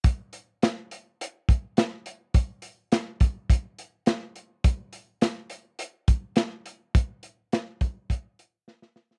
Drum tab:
HH |x-x-x-x-x-x-x-x-|x-x-x-x-x-x-x-x-|x-x-x-x-x-x-x-x-|x-x-x-x-x-x-----|
SD |----o-------o---|----o-------o---|----o-------o---|----o-------oooo|
BD |o---------o-----|o-----o-o-------|o---------o-----|o-----o-o-------|